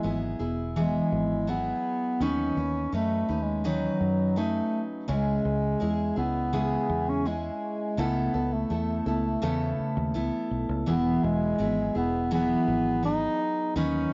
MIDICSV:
0, 0, Header, 1, 5, 480
1, 0, Start_track
1, 0, Key_signature, 4, "major"
1, 0, Tempo, 722022
1, 1466, Time_signature, 4, 2, 24, 8
1, 9394, End_track
2, 0, Start_track
2, 0, Title_t, "Steel-string acoustic guitar"
2, 0, Program_c, 0, 25
2, 21, Note_on_c, 0, 54, 54
2, 27, Note_on_c, 0, 59, 57
2, 30, Note_on_c, 0, 64, 54
2, 33, Note_on_c, 0, 68, 55
2, 252, Note_off_c, 0, 68, 0
2, 256, Note_off_c, 0, 64, 0
2, 260, Note_on_c, 0, 68, 48
2, 263, Note_off_c, 0, 59, 0
2, 264, Note_off_c, 0, 54, 0
2, 264, Note_on_c, 0, 64, 53
2, 271, Note_on_c, 0, 59, 44
2, 500, Note_off_c, 0, 59, 0
2, 502, Note_off_c, 0, 64, 0
2, 503, Note_off_c, 0, 68, 0
2, 505, Note_on_c, 0, 52, 67
2, 505, Note_on_c, 0, 54, 72
2, 508, Note_on_c, 0, 59, 73
2, 510, Note_on_c, 0, 64, 82
2, 513, Note_on_c, 0, 68, 65
2, 976, Note_off_c, 0, 54, 0
2, 979, Note_on_c, 0, 54, 59
2, 980, Note_off_c, 0, 59, 0
2, 980, Note_off_c, 0, 64, 0
2, 981, Note_off_c, 0, 68, 0
2, 983, Note_on_c, 0, 59, 70
2, 985, Note_off_c, 0, 52, 0
2, 988, Note_on_c, 0, 64, 65
2, 989, Note_on_c, 0, 68, 67
2, 1467, Note_off_c, 0, 59, 0
2, 1467, Note_off_c, 0, 64, 0
2, 1467, Note_off_c, 0, 68, 0
2, 1468, Note_off_c, 0, 54, 0
2, 1468, Note_on_c, 0, 51, 69
2, 1470, Note_on_c, 0, 61, 83
2, 1471, Note_on_c, 0, 54, 71
2, 1473, Note_on_c, 0, 63, 80
2, 1473, Note_on_c, 0, 71, 91
2, 1700, Note_off_c, 0, 71, 0
2, 1706, Note_off_c, 0, 51, 0
2, 1707, Note_off_c, 0, 63, 0
2, 1708, Note_off_c, 0, 54, 0
2, 1708, Note_off_c, 0, 61, 0
2, 1708, Note_on_c, 0, 71, 47
2, 1715, Note_on_c, 0, 63, 40
2, 1720, Note_on_c, 0, 61, 37
2, 1940, Note_off_c, 0, 61, 0
2, 1944, Note_on_c, 0, 54, 60
2, 1945, Note_off_c, 0, 63, 0
2, 1947, Note_off_c, 0, 71, 0
2, 1948, Note_on_c, 0, 61, 57
2, 1953, Note_on_c, 0, 63, 64
2, 1957, Note_on_c, 0, 71, 65
2, 2176, Note_off_c, 0, 71, 0
2, 2181, Note_off_c, 0, 63, 0
2, 2184, Note_on_c, 0, 71, 51
2, 2185, Note_off_c, 0, 54, 0
2, 2186, Note_off_c, 0, 61, 0
2, 2189, Note_on_c, 0, 63, 43
2, 2196, Note_on_c, 0, 61, 45
2, 2418, Note_off_c, 0, 61, 0
2, 2419, Note_off_c, 0, 63, 0
2, 2421, Note_off_c, 0, 71, 0
2, 2421, Note_on_c, 0, 51, 70
2, 2424, Note_on_c, 0, 54, 72
2, 2426, Note_on_c, 0, 61, 75
2, 2427, Note_on_c, 0, 63, 83
2, 2429, Note_on_c, 0, 71, 87
2, 2892, Note_off_c, 0, 54, 0
2, 2899, Note_off_c, 0, 63, 0
2, 2900, Note_on_c, 0, 54, 67
2, 2901, Note_off_c, 0, 71, 0
2, 2903, Note_off_c, 0, 51, 0
2, 2903, Note_off_c, 0, 61, 0
2, 2905, Note_on_c, 0, 61, 69
2, 2907, Note_on_c, 0, 63, 65
2, 2908, Note_on_c, 0, 71, 66
2, 3373, Note_off_c, 0, 54, 0
2, 3376, Note_on_c, 0, 49, 71
2, 3376, Note_on_c, 0, 56, 75
2, 3377, Note_off_c, 0, 61, 0
2, 3379, Note_off_c, 0, 63, 0
2, 3379, Note_on_c, 0, 61, 80
2, 3382, Note_on_c, 0, 64, 76
2, 3383, Note_off_c, 0, 71, 0
2, 3385, Note_on_c, 0, 68, 85
2, 3847, Note_off_c, 0, 56, 0
2, 3855, Note_on_c, 0, 56, 56
2, 3858, Note_off_c, 0, 61, 0
2, 3858, Note_off_c, 0, 68, 0
2, 3860, Note_off_c, 0, 49, 0
2, 3861, Note_on_c, 0, 61, 62
2, 3862, Note_off_c, 0, 64, 0
2, 3865, Note_on_c, 0, 64, 69
2, 3866, Note_on_c, 0, 68, 63
2, 4088, Note_off_c, 0, 68, 0
2, 4092, Note_off_c, 0, 64, 0
2, 4096, Note_on_c, 0, 68, 55
2, 4099, Note_off_c, 0, 56, 0
2, 4100, Note_off_c, 0, 61, 0
2, 4100, Note_on_c, 0, 64, 42
2, 4108, Note_on_c, 0, 61, 40
2, 4333, Note_off_c, 0, 61, 0
2, 4338, Note_off_c, 0, 68, 0
2, 4339, Note_off_c, 0, 64, 0
2, 4339, Note_on_c, 0, 49, 73
2, 4341, Note_on_c, 0, 56, 69
2, 4341, Note_on_c, 0, 61, 73
2, 4346, Note_on_c, 0, 68, 79
2, 4347, Note_on_c, 0, 64, 74
2, 4814, Note_off_c, 0, 56, 0
2, 4822, Note_off_c, 0, 49, 0
2, 4822, Note_on_c, 0, 56, 55
2, 4825, Note_off_c, 0, 61, 0
2, 4825, Note_off_c, 0, 68, 0
2, 4828, Note_off_c, 0, 64, 0
2, 4828, Note_on_c, 0, 61, 64
2, 4830, Note_on_c, 0, 64, 66
2, 4833, Note_on_c, 0, 68, 65
2, 5301, Note_on_c, 0, 49, 68
2, 5302, Note_off_c, 0, 56, 0
2, 5304, Note_off_c, 0, 61, 0
2, 5305, Note_on_c, 0, 57, 85
2, 5307, Note_on_c, 0, 59, 74
2, 5308, Note_off_c, 0, 64, 0
2, 5308, Note_off_c, 0, 68, 0
2, 5311, Note_on_c, 0, 64, 96
2, 5313, Note_on_c, 0, 69, 89
2, 5535, Note_off_c, 0, 69, 0
2, 5538, Note_off_c, 0, 64, 0
2, 5542, Note_off_c, 0, 49, 0
2, 5543, Note_on_c, 0, 69, 49
2, 5544, Note_off_c, 0, 57, 0
2, 5545, Note_off_c, 0, 59, 0
2, 5546, Note_on_c, 0, 64, 41
2, 5554, Note_on_c, 0, 59, 40
2, 5780, Note_off_c, 0, 59, 0
2, 5783, Note_off_c, 0, 69, 0
2, 5784, Note_on_c, 0, 57, 61
2, 5785, Note_off_c, 0, 64, 0
2, 5788, Note_on_c, 0, 59, 57
2, 5793, Note_on_c, 0, 64, 59
2, 5794, Note_on_c, 0, 69, 56
2, 6015, Note_off_c, 0, 69, 0
2, 6021, Note_off_c, 0, 64, 0
2, 6023, Note_on_c, 0, 69, 51
2, 6024, Note_off_c, 0, 57, 0
2, 6026, Note_off_c, 0, 59, 0
2, 6029, Note_on_c, 0, 64, 48
2, 6036, Note_on_c, 0, 59, 45
2, 6258, Note_off_c, 0, 59, 0
2, 6260, Note_off_c, 0, 64, 0
2, 6260, Note_on_c, 0, 49, 84
2, 6263, Note_off_c, 0, 69, 0
2, 6264, Note_on_c, 0, 57, 95
2, 6266, Note_on_c, 0, 59, 100
2, 6268, Note_on_c, 0, 64, 88
2, 6270, Note_on_c, 0, 69, 89
2, 6734, Note_off_c, 0, 57, 0
2, 6742, Note_off_c, 0, 49, 0
2, 6742, Note_on_c, 0, 57, 65
2, 6743, Note_off_c, 0, 59, 0
2, 6745, Note_off_c, 0, 69, 0
2, 6746, Note_on_c, 0, 59, 77
2, 6747, Note_off_c, 0, 64, 0
2, 6749, Note_on_c, 0, 64, 66
2, 6753, Note_on_c, 0, 69, 81
2, 7222, Note_off_c, 0, 57, 0
2, 7222, Note_on_c, 0, 52, 75
2, 7225, Note_on_c, 0, 54, 73
2, 7228, Note_off_c, 0, 59, 0
2, 7228, Note_off_c, 0, 64, 0
2, 7228, Note_off_c, 0, 69, 0
2, 7230, Note_on_c, 0, 59, 83
2, 7231, Note_on_c, 0, 64, 78
2, 7232, Note_on_c, 0, 68, 79
2, 7698, Note_off_c, 0, 54, 0
2, 7701, Note_on_c, 0, 54, 61
2, 7702, Note_off_c, 0, 59, 0
2, 7702, Note_off_c, 0, 64, 0
2, 7703, Note_off_c, 0, 52, 0
2, 7705, Note_on_c, 0, 59, 64
2, 7706, Note_off_c, 0, 68, 0
2, 7710, Note_on_c, 0, 64, 66
2, 7714, Note_on_c, 0, 68, 70
2, 7935, Note_off_c, 0, 68, 0
2, 7942, Note_off_c, 0, 54, 0
2, 7943, Note_off_c, 0, 64, 0
2, 7943, Note_on_c, 0, 68, 49
2, 7944, Note_off_c, 0, 59, 0
2, 7951, Note_on_c, 0, 64, 46
2, 7957, Note_on_c, 0, 59, 35
2, 8178, Note_off_c, 0, 59, 0
2, 8179, Note_off_c, 0, 64, 0
2, 8181, Note_off_c, 0, 68, 0
2, 8183, Note_on_c, 0, 52, 87
2, 8185, Note_on_c, 0, 54, 79
2, 8186, Note_on_c, 0, 59, 84
2, 8187, Note_on_c, 0, 64, 85
2, 8189, Note_on_c, 0, 68, 79
2, 8657, Note_off_c, 0, 54, 0
2, 8660, Note_on_c, 0, 54, 60
2, 8662, Note_off_c, 0, 59, 0
2, 8663, Note_off_c, 0, 52, 0
2, 8664, Note_off_c, 0, 68, 0
2, 8665, Note_off_c, 0, 64, 0
2, 8665, Note_on_c, 0, 59, 57
2, 8672, Note_on_c, 0, 68, 73
2, 9145, Note_off_c, 0, 59, 0
2, 9145, Note_on_c, 0, 51, 75
2, 9146, Note_off_c, 0, 54, 0
2, 9147, Note_on_c, 0, 61, 77
2, 9148, Note_off_c, 0, 68, 0
2, 9149, Note_on_c, 0, 54, 83
2, 9152, Note_on_c, 0, 63, 90
2, 9152, Note_on_c, 0, 71, 83
2, 9377, Note_off_c, 0, 71, 0
2, 9381, Note_off_c, 0, 63, 0
2, 9385, Note_off_c, 0, 51, 0
2, 9386, Note_off_c, 0, 54, 0
2, 9386, Note_off_c, 0, 61, 0
2, 9394, End_track
3, 0, Start_track
3, 0, Title_t, "Bass clarinet"
3, 0, Program_c, 1, 71
3, 0, Note_on_c, 1, 56, 98
3, 238, Note_off_c, 1, 56, 0
3, 514, Note_on_c, 1, 56, 95
3, 995, Note_on_c, 1, 59, 99
3, 1005, Note_off_c, 1, 56, 0
3, 1475, Note_on_c, 1, 61, 103
3, 1485, Note_off_c, 1, 59, 0
3, 1950, Note_off_c, 1, 61, 0
3, 1954, Note_on_c, 1, 57, 97
3, 2275, Note_on_c, 1, 56, 81
3, 2285, Note_off_c, 1, 57, 0
3, 2434, Note_on_c, 1, 54, 89
3, 2444, Note_off_c, 1, 56, 0
3, 2907, Note_on_c, 1, 57, 103
3, 2917, Note_off_c, 1, 54, 0
3, 3206, Note_off_c, 1, 57, 0
3, 3386, Note_on_c, 1, 56, 100
3, 4078, Note_off_c, 1, 56, 0
3, 4110, Note_on_c, 1, 59, 92
3, 4714, Note_on_c, 1, 61, 90
3, 4724, Note_off_c, 1, 59, 0
3, 4833, Note_on_c, 1, 56, 86
3, 4843, Note_off_c, 1, 61, 0
3, 5319, Note_on_c, 1, 59, 96
3, 5329, Note_off_c, 1, 56, 0
3, 5674, Note_on_c, 1, 57, 74
3, 5684, Note_off_c, 1, 59, 0
3, 6629, Note_off_c, 1, 57, 0
3, 7232, Note_on_c, 1, 59, 93
3, 7473, Note_on_c, 1, 56, 111
3, 7483, Note_off_c, 1, 59, 0
3, 7948, Note_off_c, 1, 56, 0
3, 7957, Note_on_c, 1, 59, 92
3, 8174, Note_off_c, 1, 59, 0
3, 8198, Note_on_c, 1, 59, 106
3, 8644, Note_off_c, 1, 59, 0
3, 8678, Note_on_c, 1, 63, 124
3, 9124, Note_off_c, 1, 63, 0
3, 9154, Note_on_c, 1, 61, 103
3, 9394, Note_off_c, 1, 61, 0
3, 9394, End_track
4, 0, Start_track
4, 0, Title_t, "Fingered electric bass"
4, 0, Program_c, 2, 33
4, 27, Note_on_c, 2, 32, 82
4, 224, Note_off_c, 2, 32, 0
4, 268, Note_on_c, 2, 28, 80
4, 660, Note_off_c, 2, 28, 0
4, 745, Note_on_c, 2, 32, 82
4, 1139, Note_off_c, 2, 32, 0
4, 1465, Note_on_c, 2, 39, 98
4, 1662, Note_off_c, 2, 39, 0
4, 1706, Note_on_c, 2, 39, 88
4, 1903, Note_off_c, 2, 39, 0
4, 1946, Note_on_c, 2, 42, 76
4, 2142, Note_off_c, 2, 42, 0
4, 2188, Note_on_c, 2, 39, 84
4, 2580, Note_off_c, 2, 39, 0
4, 2664, Note_on_c, 2, 42, 82
4, 3058, Note_off_c, 2, 42, 0
4, 3383, Note_on_c, 2, 37, 103
4, 3580, Note_off_c, 2, 37, 0
4, 3624, Note_on_c, 2, 37, 99
4, 3821, Note_off_c, 2, 37, 0
4, 3866, Note_on_c, 2, 40, 76
4, 4062, Note_off_c, 2, 40, 0
4, 4104, Note_on_c, 2, 37, 81
4, 4497, Note_off_c, 2, 37, 0
4, 4584, Note_on_c, 2, 40, 98
4, 4978, Note_off_c, 2, 40, 0
4, 5305, Note_on_c, 2, 37, 108
4, 5501, Note_off_c, 2, 37, 0
4, 5547, Note_on_c, 2, 37, 94
4, 5742, Note_off_c, 2, 37, 0
4, 5787, Note_on_c, 2, 40, 86
4, 5982, Note_off_c, 2, 40, 0
4, 6024, Note_on_c, 2, 37, 93
4, 6220, Note_off_c, 2, 37, 0
4, 6267, Note_on_c, 2, 40, 85
4, 6462, Note_off_c, 2, 40, 0
4, 6627, Note_on_c, 2, 39, 92
4, 6724, Note_off_c, 2, 39, 0
4, 6749, Note_on_c, 2, 37, 71
4, 6845, Note_off_c, 2, 37, 0
4, 6988, Note_on_c, 2, 35, 77
4, 7085, Note_off_c, 2, 35, 0
4, 7108, Note_on_c, 2, 37, 89
4, 7204, Note_off_c, 2, 37, 0
4, 7228, Note_on_c, 2, 28, 101
4, 7423, Note_off_c, 2, 28, 0
4, 7472, Note_on_c, 2, 28, 103
4, 7666, Note_off_c, 2, 28, 0
4, 7709, Note_on_c, 2, 32, 81
4, 7903, Note_off_c, 2, 32, 0
4, 7948, Note_on_c, 2, 28, 91
4, 8340, Note_off_c, 2, 28, 0
4, 8428, Note_on_c, 2, 32, 84
4, 8820, Note_off_c, 2, 32, 0
4, 9146, Note_on_c, 2, 39, 100
4, 9342, Note_off_c, 2, 39, 0
4, 9394, End_track
5, 0, Start_track
5, 0, Title_t, "Muted fingered electric bass strokes"
5, 6510, Note_on_c, 9, 29, 48
5, 6577, Note_off_c, 9, 29, 0
5, 9394, End_track
0, 0, End_of_file